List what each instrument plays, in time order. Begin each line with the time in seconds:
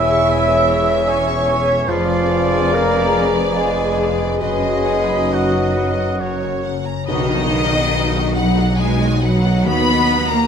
Already playing: double bass section E1, cello section E2, harp E2 E3 C#4 G#4 G#5, bassoon E4, french horn section G#4 C#5, viola section G#4, oboe E5, clarinet E5, trumpet E5, violin section E5 G#5, flute section E6
0.12 harp E4, violin section C#6
0.29 harp G#4, violin section G#5
0.50 harp C#5, violin section E5
0.69 violin section C#5, harp E5
0.89 violin section E5, harp G#5
1.08 bassoon C#4, oboe C#5, clarinet C#5, harp E5, violin section G#5, flute section C#6
1.28 harp G#4, violin section C#6
1.47 harp E4, violin section G#5
1.66 harp C#4, violin section E5
1.87 double bass section F1, harp F2, cello section F2, bassoon F3, clarinet F4, oboe F4, viola section G#4, french horn section G#4 B4, violin section B4 D5, trumpet D5, flute section F5
2.07 harp F3, violin section D5
2.29 harp B3, violin section F5
2.52 harp D4, violin section G#5
2.73 bassoon A#3, harp G#4, clarinet A#4, oboe A#4, violin section F5, flute section A#5
2.94 violin section D5
3.14 violin section B4, harp D5
3.35 violin section D5, harp G#5
3.54 bassoon G#3, oboe G#4, clarinet G#4, harp D5, violin section F5
3.59 flute section G#5
3.75 harp G#4, violin section G#5
3.97 harp D4, violin section F5
4.18 harp B3, violin section D5
4.40 double bass section F#1, harp F#2, cello section F#2, bassoon G#3, french horn section F#4, viola section F#4, clarinet G#4, oboe G#4, violin section B4 D#5, trumpet D#5, flute section G#5
4.63 harp F#3, violin section D#5
4.85 harp B3, violin section F#5
5.08 harp D#4, violin section B5
5.30 bassoon F#3, harp F#4, clarinet F#4, oboe F#4, violin section F#5
5.35 flute section F#5
5.52 harp B4, violin section D#5
5.74 violin section B4, harp D#5
5.95 violin section D#5, harp F#5
6.19 harp F#2, violin section A#4 C#5, french horn section A#4, trumpet C#5
6.42 harp C#3, violin section C#5
6.64 harp A#3, violin section F#5
6.85 harp C#4, violin section A#5
7.07 double bass section B1, harp B2, cello section D#3, viola section F#3 D#4, french horn section B3 F#4, violin section D#4 B4 D#5, tam-tam
7.29 viola section D#3 B3, harp F#3, violin section F#4 D#5
7.51 viola section F#3 D#4, harp B3, violin section D#4 B4
7.72 viola section D#3 B3, harp D#4, violin section F#4 D#5
7.94 viola section F#3 D#4, violin section D#4 B4, harp F#4
8.15 viola section D#3 B3, harp D#4, violin section F#4 D#5
8.36 viola section F#3 D#4, cello section F#3, violin section D#4 B4 F#5, harp F#4
8.57 viola section D#3 B3, harp D#4, violin section F#4 D#5
8.77 harp F#3, viola section F#3 D#4, cello section G#3, violin section D#4 B4 G#5
8.99 viola section D#3 B3, harp B3, violin section F#4 D#5
9.21 harp F#3, viola section F#3 D#4, cello section F#3, violin section D#4 B4 F#5
9.44 viola section D#3 B3, harp B3, violin section F#4 D#5
9.65 double bass section D#2, harp D#3, viola section F#3 D#4, french horn section B3 F#4, cello section B3, violin section B5
9.69 violin section D#4 B4
9.87 viola section D#3 B3, harp B3, violin section F#4 D#5
10.09 viola section F#3 D#4, harp D#4, violin section D#4 B4
10.30 viola section D#3 B3, cello section A#3, harp F#4, violin section A#5
10.35 violin section F#4 D#5